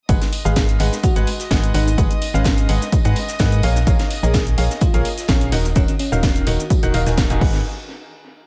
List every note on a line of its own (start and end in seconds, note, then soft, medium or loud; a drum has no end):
0.09 0.19 G#1 loud
0.09 0.21 G#3 medium
0.09 0.21 G#4 medium
0.09 0.21 B4 medium
0.09 7.41 D#5 medium
0.09 0.21 D#5 medium
0.09 0.21 F#5 medium
0.09 7.41 D#6 medium
0.09 kick loud
0.09 closed hi-hat medium
0.09 tambourine loud
0.09 cabasa medium
0.21 snare soft
0.21 closed hi-hat medium
0.21 cabasa soft
0.33 open hi-hat loud
0.33 tambourine medium
0.45 0.78 G#1 medium
0.45 0.77 G#3 medium
0.45 0.77 G#4 medium
0.45 0.65 G#4 medium
0.45 0.77 B4 medium
0.45 0.77 D#5 medium
0.45 0.77 F5 medium
0.45 cabasa medium
0.56 kick loud
0.56 snare loud
0.56 closed hi-hat medium
0.56 tambourine loud
0.56 cabasa medium
0.69 closed hi-hat medium
0.69 cabasa soft
0.79 0.90 G#1 loud
0.79 0.92 G#3 medium
0.79 0.92 G#4 medium
0.79 0.92 B4 medium
0.79 0.92 D#5 medium
0.79 0.92 F#5 medium
0.79 snare medium
0.79 open hi-hat loud
0.79 tambourine medium
0.93 snare soft
0.93 cabasa medium
1.03 1.51 F#4 medium
1.03 kick loud
1.03 closed hi-hat medium
1.03 tambourine medium
1.03 cabasa medium
1.16 1.25 G#1 medium
1.16 1.27 G#3 loud
1.16 1.27 G#4 medium
1.16 1.27 B4 medium
1.16 1.27 D#5 medium
1.16 1.27 F#5 loud
1.16 closed hi-hat medium
1.16 cabasa soft
1.27 open hi-hat loud
1.27 tambourine medium
1.40 snare medium
1.40 closed hi-hat soft
1.40 cabasa medium
1.51 1.72 G#1 medium
1.51 1.70 G#3 medium
1.51 1.70 G#4 medium
1.51 1.70 B4 medium
1.51 1.70 D#5 medium
1.51 1.70 F#5 loud
1.51 kick loud
1.51 snare loud
1.51 closed hi-hat medium
1.51 tambourine loud
1.51 cabasa medium
1.64 closed hi-hat medium
1.64 cabasa soft
1.74 1.96 G#1 loud
1.74 1.87 G#3 medium
1.74 1.95 D#4 medium
1.74 1.87 G#4 medium
1.74 1.87 B4 medium
1.74 1.87 D#5 medium
1.74 1.87 F#5 medium
1.74 snare soft
1.74 open hi-hat loud
1.74 tambourine medium
1.88 closed hi-hat soft
1.88 cabasa medium
1.98 2.08 G#1 loud
1.98 2.10 G#3 medium
1.98 2.10 G#4 medium
1.98 2.10 B4 medium
1.98 2.10 D#5 medium
1.98 2.10 F#5 loud
1.98 kick loud
1.98 closed hi-hat medium
1.98 tambourine medium
1.98 cabasa medium
2.11 closed hi-hat medium
2.11 cabasa soft
2.22 open hi-hat loud
2.22 tambourine medium
2.34 2.67 G#1 medium
2.34 2.66 G#3 medium
2.34 2.69 C#4 medium
2.34 2.66 G#4 medium
2.34 2.66 B4 medium
2.34 2.66 D#5 medium
2.34 2.66 F5 medium
2.34 cabasa medium
2.44 kick loud
2.44 snare loud
2.44 closed hi-hat medium
2.44 tambourine medium
2.44 cabasa medium
2.58 closed hi-hat medium
2.58 cabasa soft
2.69 2.79 G#1 loud
2.69 2.81 G#3 medium
2.69 2.81 G#4 medium
2.69 2.81 B4 medium
2.69 2.81 D#5 medium
2.69 2.81 F#5 medium
2.69 open hi-hat loud
2.69 tambourine medium
2.82 cabasa medium
2.92 kick loud
2.92 closed hi-hat medium
2.92 tambourine medium
2.92 cabasa medium
3.05 3.14 G#2 medium
3.05 3.16 G#3 loud
3.05 3.16 G#4 medium
3.05 3.16 B4 medium
3.05 3.16 D#5 medium
3.05 3.16 F#5 loud
3.05 closed hi-hat medium
3.05 cabasa soft
3.16 open hi-hat loud
3.16 tambourine medium
3.28 snare medium
3.28 closed hi-hat soft
3.28 cabasa medium
3.39 3.61 G#2 medium
3.39 3.59 A#3 medium
3.39 3.59 G#4 medium
3.39 3.59 B4 medium
3.39 3.59 D#5 medium
3.39 3.59 F#5 loud
3.39 kick loud
3.39 snare loud
3.39 closed hi-hat medium
3.39 tambourine medium
3.39 cabasa medium
3.52 closed hi-hat medium
3.52 cabasa soft
3.63 3.85 A#1 medium
3.63 3.76 A#3 medium
3.63 3.76 G#4 medium
3.63 3.76 A#4 medium
3.63 3.76 C#5 medium
3.63 3.76 F5 medium
3.63 open hi-hat loud
3.63 tambourine medium
3.76 cabasa medium
3.87 3.97 A#1 loud
3.87 3.99 A#3 medium
3.87 3.99 G#4 medium
3.87 3.99 A#4 medium
3.87 3.99 C#5 medium
3.87 3.99 F5 loud
3.87 kick loud
3.87 closed hi-hat medium
3.87 tambourine medium
3.87 cabasa medium
3.99 snare medium
3.99 snare soft
3.99 closed hi-hat medium
3.99 cabasa soft
4.11 open hi-hat loud
4.11 tambourine medium
4.23 4.56 A#1 loud
4.23 4.55 A#3 medium
4.23 4.55 G#4 medium
4.23 4.43 G#4 medium
4.23 4.55 A#4 medium
4.23 4.55 C#5 medium
4.23 4.55 D#5 loud
4.23 cabasa medium
4.34 kick loud
4.34 snare loud
4.34 closed hi-hat medium
4.34 tambourine medium
4.34 cabasa medium
4.47 closed hi-hat medium
4.47 cabasa soft
4.58 4.68 A#1 loud
4.58 4.70 A#3 medium
4.58 4.70 G#4 medium
4.58 4.70 A#4 medium
4.58 4.70 C#5 medium
4.58 4.70 F5 medium
4.58 snare medium
4.58 open hi-hat loud
4.58 tambourine medium
4.71 snare soft
4.71 cabasa medium
4.81 5.29 F4 medium
4.81 kick loud
4.81 closed hi-hat medium
4.81 tambourine medium
4.81 cabasa medium
4.94 5.03 A#1 medium
4.94 5.05 A#3 loud
4.94 5.05 G#4 loud
4.94 5.05 A#4 medium
4.94 5.05 C#5 medium
4.94 5.05 F5 loud
4.94 closed hi-hat medium
4.94 cabasa soft
5.05 open hi-hat loud
5.05 tambourine medium
5.18 snare medium
5.18 closed hi-hat soft
5.18 cabasa medium
5.28 5.50 A#1 medium
5.28 5.57 C#4 medium
5.28 5.48 G#4 loud
5.28 5.48 A#4 medium
5.28 5.48 C#5 medium
5.28 5.48 F5 loud
5.28 kick loud
5.28 snare loud
5.28 closed hi-hat medium
5.28 tambourine medium
5.28 cabasa medium
5.41 closed hi-hat medium
5.41 cabasa soft
5.52 5.74 D#1 medium
5.52 5.65 D#3 medium
5.52 5.65 F#4 medium
5.52 5.65 A#4 medium
5.52 5.65 D#5 medium
5.52 5.65 F#5 medium
5.52 snare medium
5.52 open hi-hat loud
5.52 tambourine medium
5.65 closed hi-hat soft
5.65 cabasa medium
5.75 5.86 D#1 loud
5.75 5.88 D#3 medium
5.75 5.84 C#4 medium
5.75 5.88 F#4 medium
5.75 5.88 A#4 medium
5.75 5.88 D#5 medium
5.75 5.88 F#5 loud
5.75 kick loud
5.75 closed hi-hat medium
5.75 tambourine medium
5.75 cabasa medium
5.88 5.96 C#4 medium
5.88 closed hi-hat medium
5.88 cabasa soft
5.99 6.45 C#4 loud
5.99 open hi-hat loud
5.99 tambourine medium
6.12 6.45 D#1 medium
6.12 6.44 D#3 medium
6.12 6.44 F#4 medium
6.12 6.44 A#4 medium
6.12 6.44 D#5 medium
6.12 6.44 F5 loud
6.12 cabasa medium
6.23 kick loud
6.23 snare loud
6.23 closed hi-hat medium
6.23 tambourine medium
6.23 cabasa medium
6.36 closed hi-hat medium
6.36 cabasa soft
6.47 6.57 D#1 loud
6.47 6.59 D#3 medium
6.47 6.59 F#4 medium
6.47 6.94 F#4 medium
6.47 6.59 A#4 medium
6.47 6.59 D#5 medium
6.47 6.59 F#5 medium
6.47 open hi-hat loud
6.47 tambourine medium
6.60 cabasa medium
6.70 kick loud
6.70 closed hi-hat medium
6.70 tambourine medium
6.70 cabasa medium
6.83 6.92 D#1 medium
6.83 6.92 D#3 loud
6.83 6.92 F#4 medium
6.83 6.92 A#4 medium
6.83 6.92 D#5 medium
6.83 6.92 F#5 loud
6.83 closed hi-hat medium
6.83 cabasa soft
6.94 7.04 D#1 loud
6.94 7.05 D#3 medium
6.94 7.05 F#4 medium
6.94 7.05 A#4 medium
6.94 7.05 D#5 medium
6.94 7.05 F5 loud
6.94 open hi-hat loud
6.94 tambourine medium
7.06 7.28 D#1 medium
7.06 7.17 D#3 medium
7.06 7.17 F#4 medium
7.06 7.17 A#4 medium
7.06 7.17 D#5 medium
7.06 7.17 G#5 loud
7.06 snare medium
7.06 closed hi-hat soft
7.06 cabasa medium
7.17 kick loud
7.17 snare loud
7.17 closed hi-hat medium
7.17 tambourine loud
7.17 cabasa medium
7.30 7.41 D#1 loud
7.30 7.41 D#3 medium
7.30 7.41 F#4 medium
7.30 7.41 A#4 medium
7.30 7.40 D#5 medium
7.30 7.41 G#5 loud
7.30 closed hi-hat medium
7.30 cabasa soft
7.41 7.63 G#1 medium
7.41 7.59 G#4 medium
7.41 7.59 B4 medium
7.41 7.59 D#5 medium
7.41 7.59 F#5 medium
7.41 kick loud
7.41 crash medium